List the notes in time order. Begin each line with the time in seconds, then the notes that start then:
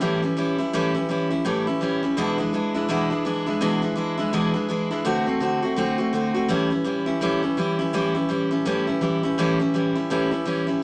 0.01 A2 E3 G3 C#4 E4
0.22 G3 C#4 E4
0.37 E3 G3 C#4 E4
0.58 G3 C#4 E4
0.73 A2 E3 G3 C#4 E4
0.94 G3 C#4 E4
1.09 E3 G3 C#4 E4
1.30 G3 C#4 E4
1.45 A2 E3 G3 C#4 E4
1.67 G3 C#4 E4
1.81 E3 G3 C#4 E4
2.03 G3 C#4 E4
2.17 E2 B2 E3 G#3 D4 E4
2.38 E3 G#3 D4 E4
2.53 E3 G#3 D4 E4
2.74 E3 G#3 D4 E4
2.89 E2 B2 E3 G#3 D4 E4
3.10 E3 G#3 D4 E4
3.25 E3 G#3 D4 E4
3.46 E3 G#3 D4 E4
3.61 E2 B2 E3 G#3 D4 E4
3.82 E3 G#3 D4 E4
3.96 E3 G#3 D4 E4
4.18 E3 G#3 D4 E4
4.33 E2 B2 E3 G#3 D4 E4
4.54 E3 G#3 D4 E4
4.69 E3 G#3 D4 E4
4.91 E3 G#3 D4 E4
5.05 D3 A3 C4 F#4
5.27 A3 C4 F#4
5.40 D3 A3 C4 F#4
5.62 A3 C4 F#4
5.76 D3 A3 C4 F#4
5.98 A3 C4 F#4
6.13 D3 A3 C4 F#4
6.34 A3 C4 F#4
6.48 A2 E3 G3 C#4 E4
6.70 G3 C#4 E4
6.84 E3 G3 C#4 E4
7.06 G3 C#4 E4
7.21 A2 E3 G3 C#4 E4
7.43 G3 C#4 E4
7.57 E3 G3 C#4 E4
7.79 G3 C#4 E4
7.93 A2 E3 G3 C#4 E4
8.15 G3 C#4 E4
8.29 E3 G3 C#4 E4
8.51 G3 C#4 E4
8.65 A2 E3 G3 C#4 E4
8.87 G3 C#4 E4
9.01 E3 G3 C#4 E4
9.23 G3 C#4 E4
9.38 A2 E3 G3 C#4 E4
9.59 C#4 E4
9.74 E3 G3 C#4 E4
9.95 G3 C#4 E4
10.10 A2 E3 G3 C#4 E4
10.31 G3 C#4 E4
10.45 E3 G3 C#4 E4
10.67 G3 C#4 E4